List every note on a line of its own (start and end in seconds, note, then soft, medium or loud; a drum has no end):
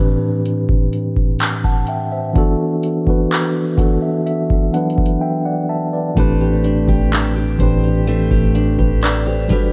0.00 2.38 A2 medium
0.00 2.33 E3 medium
0.00 2.38 C4 medium
0.00 2.36 D4 medium
0.00 2.38 G4 medium
0.00 2.37 B4 medium
0.46 closed hi-hat medium
0.69 kick medium
0.93 closed hi-hat medium
1.17 kick medium
1.39 clap loud
1.39 closed hi-hat medium
1.64 1.87 F#5 medium
1.64 1.87 A5 medium
1.64 kick medium
1.87 2.11 E5 medium
1.87 2.11 G5 medium
1.87 closed hi-hat medium
2.12 2.58 C5 medium
2.12 2.57 E5 medium
2.33 2.99 E3 loud
2.33 3.00 B3 loud
2.33 3.00 D4 loud
2.33 3.01 F#4 loud
2.33 kick loud
2.33 closed hi-hat medium
2.38 3.01 A4 loud
2.83 closed hi-hat medium
3.05 3.70 E3 medium
3.05 3.71 B3 medium
3.05 3.72 D4 medium
3.05 3.72 F#4 medium
3.05 kick medium
3.10 3.73 B4 medium
3.32 clap loud
3.32 closed hi-hat medium
3.76 4.63 E3 medium
3.76 4.64 B3 medium
3.76 4.64 D4 medium
3.76 4.65 F#4 medium
3.76 4.01 F#5 medium
3.76 kick loud
3.76 closed hi-hat medium
3.81 4.66 A4 medium
4.02 4.24 E5 medium
4.26 4.70 E5 medium
4.26 closed hi-hat medium
4.50 kick medium
4.72 6.02 E3 medium
4.72 6.03 F#3 medium
4.72 6.02 B3 medium
4.72 6.03 D4 medium
4.72 5.18 F#5 medium
4.72 closed hi-hat medium
4.76 5.23 B4 medium
4.90 closed hi-hat medium
4.98 kick medium
5.06 closed hi-hat medium
5.21 5.44 E5 medium
5.21 5.66 G5 medium
5.45 5.68 D5 medium
5.45 5.68 F#5 medium
5.69 5.92 E5 medium
5.69 6.13 A5 medium
5.93 6.18 B4 medium
5.93 6.38 D5 medium
6.15 6.85 A1 loud
6.15 7.45 A2 loud
6.15 7.45 E3 loud
6.15 8.06 A3 medium
6.15 7.46 C4 medium
6.15 7.46 D4 medium
6.15 7.46 G4 medium
6.15 7.58 C5 medium
6.15 kick loud
6.15 closed hi-hat medium
6.20 7.47 B4 loud
6.41 6.88 G4 medium
6.64 7.12 D4 medium
6.64 closed hi-hat medium
6.88 7.57 A1 medium
6.88 7.35 G4 medium
6.88 kick medium
7.12 8.54 D4 medium
7.12 clap loud
7.12 closed hi-hat medium
7.36 7.83 G4 medium
7.58 8.28 A1 loud
7.58 8.44 A2 medium
7.58 8.45 E3 medium
7.58 8.45 C4 medium
7.58 8.46 D4 medium
7.58 8.46 G4 medium
7.58 8.07 C5 medium
7.58 kick loud
7.58 closed hi-hat medium
7.62 8.47 B4 medium
7.83 8.31 G4 medium
8.07 9.60 A3 medium
8.07 9.60 C5 medium
8.07 closed hi-hat medium
8.31 8.77 A1 loud
8.31 8.78 G4 medium
8.31 kick medium
8.55 9.02 D4 medium
8.55 closed hi-hat medium
8.79 9.47 A1 medium
8.79 9.26 G4 medium
8.79 9.02 G4 medium
8.79 9.01 B4 medium
8.79 kick medium
9.01 9.73 D4 medium
9.01 9.26 B4 medium
9.01 9.25 D5 medium
9.01 clap loud
9.01 closed hi-hat medium
9.26 9.73 G4 medium
9.26 9.50 A4 medium
9.26 9.72 C5 medium
9.48 9.73 G1 loud
9.48 9.73 G3 medium
9.48 9.73 D4 medium
9.48 9.73 F#4 medium
9.48 9.73 A4 medium
9.48 kick loud
9.48 closed hi-hat medium
9.53 9.73 B4 medium